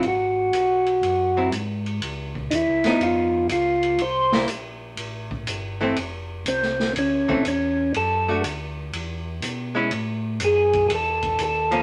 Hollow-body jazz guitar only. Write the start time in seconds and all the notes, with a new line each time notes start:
1.37 F#3 C4 E4
2.85 F3 B3 D#4
4.33 G3 A#3 E4
5.81 E3 A3 C4
7.28 E3 A3 C4
8.28 A3 D4 F#4
9.75 G#3 C#4 E4
11.71 F3 A#3 C#4